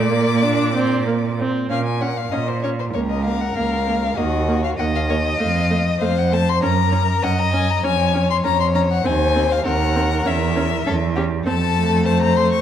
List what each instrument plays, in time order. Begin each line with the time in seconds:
Already playing: cello A#2, viola A3, violin D5 D6
0.10 viola A#3
0.43 viola D4
0.75 viola C4
1.07 viola A#3
1.39 viola C4
1.70 cello A#2, viola C#4, violin F5
1.86 violin G#5
2.01 viola C#4, violin F#5
2.17 violin F5
2.32 cello A#2, viola C#4, violin D#5
2.48 violin C5
2.63 viola C#4, violin C#5
2.79 violin C5
2.93 cello C#2, viola A#3, violin A#4 C#5
3.09 violin D#5
3.25 viola A#3, violin F5
3.41 violin F#5
3.55 cello C#2, viola A#3, violin F5
3.87 viola A#3
4.17 cello D#2, viola A#3, violin F#4 D#5
4.48 viola A#3
4.64 violin F5
4.79 cello D#2, viola A#3, violin D#5 F#5
4.95 violin F5
5.09 viola A#3, violin C#5
5.25 violin D#5
5.39 cello F2, viola A3, violin F5
5.71 viola A3
5.87 violin D#5
6.01 cello F2, viola A3, violin C5 F5
6.18 violin F#5
6.32 viola A3, violin A5
6.49 violin C6
6.62 cello F#2, viola C#4, violin A#4 A#5
6.92 viola C#4
7.23 cello F#2, viola C#4, violin D#5 F#5
7.39 violin A#5
7.53 viola C#4, violin G#5
7.70 violin A#5
7.83 cello F2, viola C#4, violin C#5 G#5
8.14 viola C#4
8.30 violin C6
8.44 cello F2, viola C#4, violin C#5 A#5
8.60 violin C6
8.74 viola C#4, violin A#5
8.91 violin F#5
9.05 cello D#2, viola C4, violin C5 G#5
9.35 viola C4
9.52 violin F5
9.65 cello D#2, viola C4, violin A#4 F#5
9.95 viola C4
10.25 cello E2, viola C#4, violin E5
10.56 viola C#4
10.86 cello E2, viola C#4, violin A4
11.16 viola C#4, violin G4
11.46 cello F2, viola C4, violin A4 A5
11.76 viola A3
12.06 violin C5 A5
12.22 violin A#5
12.37 violin C6
12.52 violin C#6